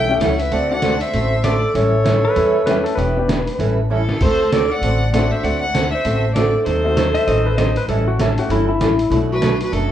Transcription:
Already playing: upright bass B1, steel-string acoustic guitar E3 G3 C#4 E4 A4, clarinet E5, fiddle G5
0.08 upright piano A3 C#4 E4 G4
0.20 upright bass C#2, steel-string acoustic guitar E3 G3 C#4 E4 A4, clarinet C#5, fiddle F#5, snare, closed hi-hat
0.39 clarinet B4, fiddle E5, open hi-hat
0.51 upright bass D2, steel-string acoustic guitar D3 A3 C4 F#4 A4, clarinet D5, fiddle F#5, open hi-hat
0.70 upright piano A3 C4 D4 F#4, clarinet D5, fiddle F#5
0.82 steel-string acoustic guitar D3 A3 C4 F#4 A4, snare, closed hi-hat
1.01 clarinet C5, fiddle E5, open hi-hat
1.13 upright bass A1, steel-string acoustic guitar D3 A3 C4 F#4 A4, open hi-hat
1.44 steel-string acoustic guitar D3 A3 C4 F#4 A4, clarinet A4, fiddle D5, snare, closed hi-hat
1.74 upright bass A1, steel-string acoustic guitar E3 G3 C#4 E4 A4, clarinet A4, fiddle C#5, open hi-hat
2.04 steel-string acoustic guitar E3 G3 C#4 E4 A4, snare, closed hi-hat
2.25 electric slide guitar B4
2.35 upright bass E2, steel-string acoustic guitar E3 G3 C#4 E4 A4, open hi-hat
2.66 steel-string acoustic guitar E3 G3 C#4 E4 A4, upright piano A3 C#4 E4 G4, electric slide guitar B4, snare, closed hi-hat
2.84 electric slide guitar A4, open hi-hat
2.95 upright bass E1, steel-string acoustic guitar E3 B3 D4 G4, electric slide guitar B4, open hi-hat
3.16 upright piano B3 D4 E4 G4
3.28 steel-string acoustic guitar E3 B3 D4 G4, snare, closed hi-hat
3.47 open hi-hat
3.59 upright bass A1, steel-string acoustic guitar E3 G3 C#4 E4 A4, open hi-hat
3.90 steel-string acoustic guitar E3 G3 C#4 E4 A4, clarinet E4, fiddle A4
4.09 snare
4.21 upright bass D2, steel-string acoustic guitar D3 A3 C4 F#4 A4, clarinet A4, fiddle C5, kick, crash
4.52 steel-string acoustic guitar D3 A3 C4 F#4 A4, clarinet A4, fiddle D5, snare, closed hi-hat
4.70 clarinet D5, fiddle F#5
4.81 upright bass A1, steel-string acoustic guitar D3 A3 C4 F#4 A4, open hi-hat
5.13 steel-string acoustic guitar D3 A3 C4 F#4 A4, upright piano A3 C4 D4 F#4, clarinet D5, fiddle F#5, snare, closed hi-hat
5.31 clarinet C5, fiddle E5
5.43 upright bass D2, steel-string acoustic guitar D3 A3 C4 F#4 A4, clarinet D5, fiddle F#5, open hi-hat
5.61 clarinet D5, fiddle F#5
5.74 steel-string acoustic guitar D3 A3 C4 F#4 A4, snare, closed hi-hat
5.91 clarinet C5, fiddle E5
6.04 upright bass A1, steel-string acoustic guitar D3 A3 C4 F#4 A4, open hi-hat
6.34 steel-string acoustic guitar D3 A3 C4 F#4 A4, upright piano A3 C4 D4 F#4, clarinet A4, fiddle D5, snare, closed hi-hat
6.65 upright bass D#2, steel-string acoustic guitar D#3 F#3 C4 D#4 A4, clarinet A4, fiddle C5, open hi-hat
6.84 upright piano A3 C4 D#4 F#4
6.96 steel-string acoustic guitar D#3 F#3 C4 D#4 A4, snare, closed hi-hat
7.15 electric slide guitar E5, open hi-hat
7.27 upright bass A1, steel-string acoustic guitar D#3 F#3 C4 D#4 A4, electric slide guitar D#5, open hi-hat
7.46 electric slide guitar B4
7.58 steel-string acoustic guitar D#3 F#3 C4 D#4 A4, electric slide guitar D#5, snare, closed hi-hat
7.76 electric slide guitar B4, open hi-hat
7.88 upright bass A1, steel-string acoustic guitar E3 G3 C#4 E4 A4, electric slide guitar A4, open hi-hat
8.08 electric slide guitar F#4
8.19 steel-string acoustic guitar E3 G3 C#4 E4 A4, electric slide guitar A4, snare, closed hi-hat
8.38 upright piano A3 C#4 E4 G4, electric slide guitar F#4, open hi-hat
8.49 upright bass G1, steel-string acoustic guitar E3 G3 C#4 E4 A4, electric slide guitar E4, open hi-hat
8.69 electric slide guitar E4
8.80 upright bass A1, steel-string acoustic guitar E3 G3 C#4 E4 A4, snare, closed hi-hat
8.99 open hi-hat
9.10 upright bass B1, steel-string acoustic guitar B2 F#3 A3 D4 F#4, open hi-hat
9.32 clarinet F#4, fiddle B4
9.41 steel-string acoustic guitar B2 F#3 A3 D4 F#4, snare, closed hi-hat
9.61 clarinet F#4, fiddle B4, open hi-hat
9.71 upright bass F#1, steel-string acoustic guitar B2 F#3 A3 D4 F#4, clarinet D4, fiddle A4, open hi-hat

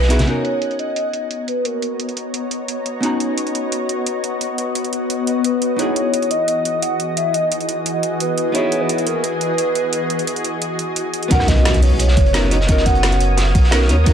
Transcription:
Already playing: sub bass B1, soft synth lead B4, ambient pad D#5 F#5 G#5
0.02 snare
0.09 hollow-body jazz guitar B3 D#4 E4 F#4 G#4, closed hi-hat
0.19 snare, closed hi-hat, high conga
0.25 hollow-body jazz guitar B3 C#4 D#4, ambient pad B3 F#4 C#5 D#5 A#5, soft synth lead C#5, closed hi-hat
0.29 hollow-body jazz guitar F#4 A#4
0.45 closed hi-hat
0.62 closed hi-hat
0.71 closed hi-hat
0.79 soft synth lead D#5, closed hi-hat
0.96 closed hi-hat
1.13 soft synth lead D#5, closed hi-hat
1.31 closed hi-hat
1.48 soft synth lead B4, closed hi-hat
1.65 soft synth lead A#4, closed hi-hat
1.82 closed hi-hat
2.00 closed hi-hat
2.09 closed hi-hat
2.17 closed hi-hat
2.34 closed hi-hat
2.51 closed hi-hat
2.68 closed hi-hat
2.86 closed hi-hat
3.00 hollow-body jazz guitar B3 C#4 D#4, closed hi-hat
3.05 hollow-body jazz guitar F#4 A#5
3.20 closed hi-hat
3.38 closed hi-hat
3.47 closed hi-hat
3.55 closed hi-hat
3.72 closed hi-hat
3.89 closed hi-hat
4.06 closed hi-hat
4.24 closed hi-hat
4.41 closed hi-hat
4.58 closed hi-hat
4.75 closed hi-hat
4.84 closed hi-hat
4.93 closed hi-hat
5.10 closed hi-hat
5.27 closed hi-hat
5.44 soft synth lead B4, closed hi-hat
5.62 closed hi-hat
5.76 ambient pad E3 G#4, hollow-body jazz guitar B3 D#4 E4, soft synth lead C#5, closed hi-hat
5.81 hollow-body jazz guitar F#4 G#4
5.96 closed hi-hat
6.14 closed hi-hat
6.22 closed hi-hat
6.31 soft synth lead D#5, closed hi-hat
6.48 closed hi-hat
6.65 closed hi-hat
6.82 soft synth lead F#5, closed hi-hat
7.00 closed hi-hat
7.17 soft synth lead E5, closed hi-hat
7.34 soft synth lead D#5, closed hi-hat
7.52 closed hi-hat
7.61 closed hi-hat
7.69 closed hi-hat
7.86 closed hi-hat
8.03 closed hi-hat
8.20 soft synth lead B4, closed hi-hat
8.38 closed hi-hat
8.52 hollow-body jazz guitar B3 D#4 E4, soft synth lead C#5, closed hi-hat
8.56 hollow-body jazz guitar F#4 G#4
8.72 closed hi-hat
8.81 soft synth lead B4
8.89 closed hi-hat
8.98 closed hi-hat
9.06 soft synth lead A#4, closed hi-hat
9.23 soft synth lead B4, closed hi-hat
9.41 closed hi-hat
9.58 closed hi-hat
9.75 closed hi-hat
9.93 closed hi-hat
10.10 closed hi-hat
10.19 closed hi-hat
10.27 closed hi-hat
10.36 closed hi-hat
10.45 closed hi-hat
10.62 closed hi-hat
10.79 closed hi-hat
10.96 closed hi-hat
11.14 closed hi-hat
11.23 closed hi-hat
11.28 sub bass B1, hollow-body jazz guitar B3 C#4 D#4, ambient pad A#4 C#5 D#6, soft synth lead F#5, kick, closed hi-hat, impact
11.32 hollow-body jazz guitar F#4 A#4
11.39 cross-stick, snare
11.48 soft synth lead D#5, kick, snare, closed hi-hat
11.57 closed hi-hat
11.65 snare, closed hi-hat
11.74 closed hi-hat
11.82 soft synth lead C#5, closed hi-hat, open hi-hat
11.99 soft synth lead C#5, closed hi-hat
12.08 snare
12.17 sub bass F#1, kick, closed hi-hat
12.26 closed hi-hat
12.33 hollow-body jazz guitar B3 C#4 D#4 F#4 A#4, snare, closed hi-hat
12.50 hollow-body jazz guitar B3 C#4 D#4 F#4 C#5, soft synth lead D#5, closed hi-hat
12.61 snare
12.66 hollow-body jazz guitar B3 C#4 D#4, soft synth lead D#5, kick, closed hi-hat
12.71 hollow-body jazz guitar F#4 A#4
12.77 snare
12.86 sub bass F#1, soft synth lead F#5, kick, closed hi-hat
12.95 closed hi-hat
13.03 snare, closed hi-hat
13.12 closed hi-hat
13.20 closed hi-hat
13.37 snare, closed hi-hat
13.55 sub bass B1, kick, closed hi-hat, open hi-hat
13.64 snare
13.71 hollow-body jazz guitar B3 C#4 D#4 F#4 A#4, snare, closed hi-hat
13.81 snare
13.88 sub bass D#2, hollow-body jazz guitar B3 C#4 D#4 F#4 C#5, closed hi-hat
14.04 sub bass B1, hollow-body jazz guitar B3 C#4 D#4, kick, closed hi-hat
14.08 hollow-body jazz guitar F#4 A#4

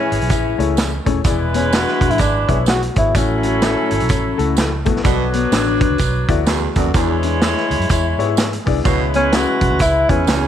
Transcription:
Already playing: saxophone section E3 C#4 G#4, tenor saxophone C#4, clean electric guitar E4
0.12 fingered electric bass G#1, closed hi-hat
0.21 fingered electric bass B1, closed hi-hat
0.29 fingered electric bass A1, clean electric guitar E4, kick, closed hi-hat, tambourine
0.58 fingered electric bass C#2, grand piano A3 E4 G#4 C#5, closed hi-hat
0.77 snare, closed hi-hat, tambourine
1.06 fingered electric bass D#1, grand piano A3 E4 G#4 C#5, clean electric guitar C#4, kick, closed hi-hat
1.24 fingered electric bass E1, grand piano E3 B3 E4 G#4 D5, saxophone section G#3 E4 B4, kick, closed hi-hat, tambourine
1.54 clean electric guitar B3, tenor saxophone C#4, closed hi-hat
1.73 clean electric guitar D4, tenor saxophone F#4, snare, closed hi-hat, tambourine
1.88 snare
2.01 fingered electric bass E1, kick, closed hi-hat
2.10 fingered electric bass A1, tenor saxophone E4, closed hi-hat
2.18 fingered electric bass G#1, tenor saxophone D4, kick, closed hi-hat, tambourine
2.48 fingered electric bass B1, grand piano B3 E4 G#4 C#5, clean electric guitar E4, kick, closed hi-hat
2.66 clean electric guitar F#4, tenor saxophone F#4, snare, closed hi-hat, tambourine
2.82 closed hi-hat
2.96 fingered electric bass G#1, grand piano B3 E4 G#4 C#5, tenor saxophone E4, kick, closed hi-hat
3.15 fingered electric bass A1, grand piano A2 A3 E4 F#4 C#5, saxophone section F#3 E4 A4, tenor saxophone C#4, kick, closed hi-hat, tambourine
3.43 clean electric guitar F#4, closed hi-hat
3.62 clean electric guitar E4, snare, closed hi-hat, tambourine
3.91 fingered electric bass G#1, closed hi-hat
4.00 fingered electric bass B1, closed hi-hat
4.09 fingered electric bass A1, clean electric guitar C#4, kick, closed hi-hat, tambourine
4.38 fingered electric bass C#2, grand piano A3 E4 F#4 A4, closed hi-hat
4.57 snare, closed hi-hat, tambourine
4.85 fingered electric bass A#1, grand piano A3 E4 F#4 A4, clean electric guitar B3, kick, closed hi-hat
4.96 snare
5.04 fingered electric bass B1, grand piano B2 B3 F#4 A4 D5, baritone saxophone B2, saxophone section F#3 D4 B4, kick, closed hi-hat, tambourine
5.33 clean electric guitar B3, closed hi-hat
5.52 fingered electric bass A1, clean electric guitar D4, snare, closed hi-hat, tambourine
5.81 kick, closed hi-hat
5.90 fingered electric bass C#2
5.98 fingered electric bass B1, kick, closed hi-hat, tambourine
6.29 fingered electric bass D2, grand piano B3 F#4 A4 D5, clean electric guitar E4, kick, closed hi-hat
6.46 baritone saxophone E2, clean electric guitar F#4, snare, closed hi-hat, tambourine
6.75 fingered electric bass D#2, baritone saxophone F#2, grand piano B3 F#4 A4 D5, kick, closed hi-hat
6.94 baritone saxophone E2, fingered electric bass E2, grand piano E3 B3 D4 E4 G#4, saxophone section G#3 E4 C#5, kick, closed hi-hat, tambourine
7.23 clean electric guitar D4, closed hi-hat
7.41 clean electric guitar E4, snare, closed hi-hat, tambourine
7.57 snare
7.70 fingered electric bass D2, closed hi-hat
7.79 fingered electric bass F#2, closed hi-hat
7.89 fingered electric bass E2, clean electric guitar E4, kick, closed hi-hat, tambourine
8.18 fingered electric bass G#2, grand piano B3 E4 G4 C#5, closed hi-hat
8.24 grand piano G#4
8.37 snare, closed hi-hat, tambourine
8.53 closed hi-hat
8.66 fingered electric bass C2, grand piano B3 E4 G#4 D5, clean electric guitar D4, kick, open hi-hat
8.84 fingered electric bass C#2, baritone saxophone B2, grand piano C#3 B3 E4 G#4 C#5, saxophone section G#3 E4 B4, kick, closed hi-hat, tambourine
9.14 clean electric guitar B3, tenor saxophone C#4, closed hi-hat
9.32 clean electric guitar C#4, tenor saxophone F#4, snare, closed hi-hat, tambourine
9.61 fingered electric bass B1, kick, closed hi-hat
9.70 fingered electric bass D2
9.79 fingered electric bass C#2, tenor saxophone E4, kick, closed hi-hat, tambourine
10.09 fingered electric bass E2, grand piano B3 D#4 G#4 B4, tenor saxophone C#4, clean electric guitar E4, kick, closed hi-hat
10.15 grand piano E4
10.27 fingered electric bass C#2, baritone saxophone E2, clean electric guitar F#4, snare, closed hi-hat, tambourine

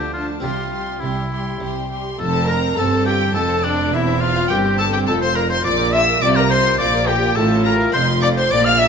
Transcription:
Already playing: double bass section D2, harpsichord D3 A3 D4, cello section D3, viola section F3, violin section D4 A5, oboe G4
0.13 viola section F3, violin section D4 A5, oboe F4
0.40 double bass section C2, harpsichord C3 C4 G4, cello section C3, viola section G3, oboe F4, violin section G4 C6
0.72 viola section G3, violin section G4 C6
1.00 double bass section C2, harpsichord C3, cello section C3, viola section G3, oboe E4, violin section G4 C6
1.31 viola section G3, violin section G4 C6
1.60 double bass section C2, cello section C3, harpsichord C3, viola section G3, violin section G4 C6
1.89 viola section G3, violin section G4 C6
2.18 double bass section F1, cello section F2, harpsichord F2, viola section C4, oboe A4, violin section A4 A5
2.33 harpsichord C5
2.47 violin section A#4 A#5, oboe A#4, harpsichord D5
2.62 harpsichord C5
2.76 double bass section G1, harpsichord G2 A4, cello section G2, viola section C4, violin section A4 A5, oboe A4
2.92 harpsichord C5
3.05 harpsichord F4, violin section G4 G5, oboe G4
3.21 harpsichord C5
3.33 double bass section F1, cello section F2, harpsichord F2 A4, viola section C4, oboe A4, violin section A4 A5
3.49 harpsichord C5
3.63 harpsichord C4, oboe D4, violin section D4 D5
3.77 harpsichord C5
3.92 double bass section E1, harpsichord E2, cello section E2, viola section C4, violin section E4 E5, oboe E4
4.07 harpsichord C5
4.20 oboe F4, violin section F4 F5, harpsichord D5
4.36 harpsichord C5
4.48 double bass section G1, cello section G2, harpsichord G2 A#4, viola section C4, oboe G4, violin section G4 G5
4.65 harpsichord C5
4.77 harpsichord G4, oboe A4, violin section A4 A5
4.93 oboe G4, violin section G4 G5, harpsichord C5
5.06 double bass section F1, cello section F2, harpsichord F2, viola section F4, oboe A4, violin section A4 A5
5.21 oboe C5, harpsichord C5, violin section C5 C6
5.36 oboe A#4, violin section A#4 A#5, harpsichord D5
5.49 oboe C5, harpsichord C5, violin section C5 C6
5.64 double bass section A#1, cello section A#2, harpsichord A#2, viola section F4, oboe D5, violin section D5 D6
5.80 harpsichord A#4
5.92 harpsichord C5, oboe E5, violin section E5 E6
6.09 harpsichord A#4
6.21 double bass section C2, cello section C3, harpsichord C3 F4, viola section F4, oboe D5, violin section D5 D6
6.36 oboe A#4, violin section A#4 A#5, harpsichord A#4
6.49 harpsichord F4, oboe C5, violin section C5 C6
6.66 harpsichord A#4
6.78 double bass section A#1, cello section A#2, harpsichord A#2 F4, viola section F4, oboe D5, violin section D5 D6
6.95 harpsichord A#4
7.07 harpsichord A#3, oboe G4, violin section G4 G5
7.23 harpsichord A#4
7.36 double bass section A1, cello section A2, harpsichord A2, viola section F4, oboe A4, violin section A4 A5
7.51 harpsichord F4
7.64 harpsichord G4, oboe A#4, violin section A#4 A#5
7.81 harpsichord F4
7.93 double bass section F1, cello section F2, harpsichord F2 D#4, viola section F4, oboe C5, violin section C5 C6
8.09 harpsichord F4
8.21 harpsichord C4, oboe D5, violin section D5 D6
8.37 harpsichord F4, violin section C5 C6, oboe C5
8.50 double bass section A#1, cello section A#2, harpsichord A#2, viola section F4, oboe D5, violin section D5 D6
8.65 harpsichord A#4, oboe F5, violin section F5 F6
8.78 harpsichord C5, oboe E5, violin section E5 E6

